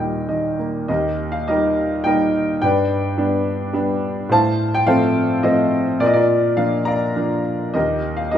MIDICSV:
0, 0, Header, 1, 2, 480
1, 0, Start_track
1, 0, Key_signature, -3, "major"
1, 0, Tempo, 599401
1, 714, Time_signature, 3, 2, 24, 8
1, 1189, Tempo, 566038
1, 5509, Tempo, 587084
1, 6981, End_track
2, 0, Start_track
2, 0, Title_t, "Grand piano"
2, 0, Program_c, 0, 0
2, 0, Control_c, 0, 64, 127
2, 0, Note_on_c, 0, 39, 41
2, 0, Note_on_c, 0, 46, 34
2, 0, Note_on_c, 0, 51, 33
2, 0, Note_on_c, 0, 55, 33
2, 0, Note_on_c, 0, 67, 40
2, 0, Note_on_c, 0, 70, 38
2, 0, Note_on_c, 0, 75, 58
2, 0, Note_on_c, 0, 79, 40
2, 212, Note_off_c, 0, 79, 0
2, 217, Note_off_c, 0, 75, 0
2, 220, Note_off_c, 0, 51, 0
2, 229, Note_on_c, 0, 75, 42
2, 232, Note_on_c, 0, 51, 32
2, 445, Note_off_c, 0, 67, 0
2, 446, Note_off_c, 0, 46, 0
2, 449, Note_off_c, 0, 70, 0
2, 474, Note_on_c, 0, 58, 34
2, 680, Note_off_c, 0, 75, 0
2, 684, Note_off_c, 0, 39, 0
2, 689, Note_off_c, 0, 55, 0
2, 699, Note_off_c, 0, 51, 0
2, 706, Note_off_c, 0, 58, 0
2, 707, Note_on_c, 0, 75, 57
2, 713, Note_on_c, 0, 39, 49
2, 724, Control_c, 0, 64, 0
2, 724, Note_on_c, 0, 70, 41
2, 727, Note_on_c, 0, 67, 39
2, 842, Control_c, 0, 64, 127
2, 1042, Note_off_c, 0, 75, 0
2, 1055, Note_on_c, 0, 77, 62
2, 1173, Note_off_c, 0, 77, 0
2, 1183, Note_on_c, 0, 75, 65
2, 1189, Note_on_c, 0, 55, 39
2, 1192, Note_off_c, 0, 70, 0
2, 1192, Note_on_c, 0, 58, 34
2, 1196, Note_off_c, 0, 67, 0
2, 1197, Note_on_c, 0, 63, 41
2, 1205, Note_on_c, 0, 70, 47
2, 1209, Note_on_c, 0, 67, 47
2, 1653, Note_off_c, 0, 55, 0
2, 1658, Note_on_c, 0, 79, 77
2, 1659, Note_off_c, 0, 58, 0
2, 1659, Note_off_c, 0, 63, 0
2, 1666, Note_on_c, 0, 55, 41
2, 1672, Note_off_c, 0, 70, 0
2, 1672, Note_on_c, 0, 58, 36
2, 1672, Note_on_c, 0, 63, 46
2, 1673, Note_off_c, 0, 75, 0
2, 1685, Note_on_c, 0, 70, 52
2, 1686, Note_on_c, 0, 75, 57
2, 1891, Note_off_c, 0, 67, 0
2, 2114, Note_off_c, 0, 79, 0
2, 2122, Note_off_c, 0, 39, 0
2, 2127, Note_off_c, 0, 70, 0
2, 2128, Note_off_c, 0, 75, 0
2, 2136, Note_off_c, 0, 55, 0
2, 2140, Note_off_c, 0, 58, 0
2, 2140, Note_off_c, 0, 63, 0
2, 2148, Note_on_c, 0, 79, 75
2, 2152, Note_on_c, 0, 43, 59
2, 2166, Control_c, 0, 64, 0
2, 2170, Note_on_c, 0, 71, 54
2, 2171, Note_on_c, 0, 74, 53
2, 2315, Control_c, 0, 64, 127
2, 2598, Note_off_c, 0, 79, 0
2, 2622, Note_on_c, 0, 55, 45
2, 2625, Note_on_c, 0, 59, 40
2, 2628, Note_on_c, 0, 62, 49
2, 2845, Note_off_c, 0, 71, 0
2, 2845, Note_off_c, 0, 74, 0
2, 3082, Note_off_c, 0, 55, 0
2, 3084, Note_off_c, 0, 59, 0
2, 3087, Note_off_c, 0, 62, 0
2, 3094, Note_on_c, 0, 55, 48
2, 3097, Note_on_c, 0, 59, 40
2, 3101, Note_on_c, 0, 62, 52
2, 3542, Note_off_c, 0, 43, 0
2, 3558, Note_off_c, 0, 55, 0
2, 3559, Note_off_c, 0, 59, 0
2, 3561, Note_off_c, 0, 62, 0
2, 3570, Note_on_c, 0, 45, 62
2, 3590, Control_c, 0, 64, 0
2, 3590, Note_on_c, 0, 72, 64
2, 3594, Note_on_c, 0, 81, 85
2, 3595, Note_on_c, 0, 77, 59
2, 3734, Control_c, 0, 64, 127
2, 3954, Note_on_c, 0, 79, 80
2, 3958, Note_off_c, 0, 81, 0
2, 4043, Note_off_c, 0, 77, 0
2, 4054, Note_off_c, 0, 72, 0
2, 4056, Note_on_c, 0, 77, 79
2, 4057, Note_on_c, 0, 53, 50
2, 4061, Note_on_c, 0, 57, 44
2, 4063, Note_on_c, 0, 69, 62
2, 4066, Note_on_c, 0, 60, 53
2, 4067, Note_on_c, 0, 72, 60
2, 4071, Note_off_c, 0, 79, 0
2, 4506, Note_off_c, 0, 77, 0
2, 4526, Note_off_c, 0, 53, 0
2, 4526, Note_off_c, 0, 57, 0
2, 4531, Note_off_c, 0, 60, 0
2, 4533, Note_off_c, 0, 69, 0
2, 4533, Note_off_c, 0, 72, 0
2, 4536, Note_on_c, 0, 75, 69
2, 4538, Note_on_c, 0, 53, 44
2, 4539, Note_on_c, 0, 57, 44
2, 4544, Note_on_c, 0, 60, 50
2, 4546, Note_on_c, 0, 69, 51
2, 4546, Note_on_c, 0, 72, 51
2, 4986, Note_off_c, 0, 45, 0
2, 4992, Note_off_c, 0, 69, 0
2, 4992, Note_off_c, 0, 72, 0
2, 5007, Note_off_c, 0, 53, 0
2, 5008, Note_off_c, 0, 57, 0
2, 5010, Note_off_c, 0, 60, 0
2, 5015, Note_on_c, 0, 46, 54
2, 5020, Note_on_c, 0, 74, 78
2, 5034, Control_c, 0, 64, 0
2, 5035, Note_off_c, 0, 75, 0
2, 5035, Note_on_c, 0, 65, 53
2, 5036, Note_on_c, 0, 70, 56
2, 5072, Note_on_c, 0, 75, 62
2, 5076, Note_off_c, 0, 74, 0
2, 5132, Note_on_c, 0, 74, 72
2, 5135, Note_off_c, 0, 75, 0
2, 5136, Note_off_c, 0, 70, 0
2, 5139, Note_off_c, 0, 65, 0
2, 5149, Note_on_c, 0, 70, 52
2, 5152, Note_on_c, 0, 65, 51
2, 5173, Control_c, 0, 64, 127
2, 5478, Note_off_c, 0, 74, 0
2, 5499, Note_on_c, 0, 53, 39
2, 5500, Note_on_c, 0, 77, 70
2, 5506, Note_on_c, 0, 58, 36
2, 5506, Note_on_c, 0, 62, 42
2, 5723, Note_off_c, 0, 77, 0
2, 5732, Note_on_c, 0, 82, 73
2, 5749, Note_on_c, 0, 77, 52
2, 5751, Note_on_c, 0, 74, 53
2, 5831, Note_off_c, 0, 70, 0
2, 5832, Note_off_c, 0, 65, 0
2, 5966, Note_off_c, 0, 53, 0
2, 5969, Note_off_c, 0, 58, 0
2, 5969, Note_off_c, 0, 62, 0
2, 5983, Note_on_c, 0, 53, 36
2, 5984, Note_on_c, 0, 58, 33
2, 5985, Note_on_c, 0, 62, 41
2, 6188, Note_off_c, 0, 82, 0
2, 6431, Note_off_c, 0, 46, 0
2, 6438, Note_off_c, 0, 77, 0
2, 6439, Note_off_c, 0, 74, 0
2, 6452, Note_off_c, 0, 53, 0
2, 6453, Note_off_c, 0, 58, 0
2, 6454, Note_off_c, 0, 62, 0
2, 6455, Note_on_c, 0, 75, 64
2, 6463, Note_on_c, 0, 39, 54
2, 6468, Note_on_c, 0, 70, 45
2, 6471, Note_on_c, 0, 67, 45
2, 6478, Control_c, 0, 64, 0
2, 6639, Control_c, 0, 64, 127
2, 6806, Note_on_c, 0, 77, 64
2, 6832, Note_off_c, 0, 75, 0
2, 6928, Note_on_c, 0, 75, 69
2, 6941, Note_off_c, 0, 77, 0
2, 6942, Note_on_c, 0, 55, 41
2, 6944, Note_off_c, 0, 70, 0
2, 6948, Note_off_c, 0, 67, 0
2, 6948, Note_on_c, 0, 58, 39
2, 6951, Note_on_c, 0, 63, 45
2, 6981, Note_off_c, 0, 39, 0
2, 6981, Note_off_c, 0, 55, 0
2, 6981, Note_off_c, 0, 58, 0
2, 6981, Note_off_c, 0, 63, 0
2, 6981, Note_off_c, 0, 75, 0
2, 6981, End_track
0, 0, End_of_file